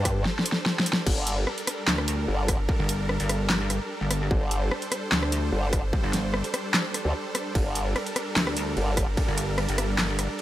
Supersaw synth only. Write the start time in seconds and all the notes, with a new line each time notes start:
Already playing: G3 D4 A4 C5
1.06 G3 D4 A4 A#4
4.31 C5
7.55 A#4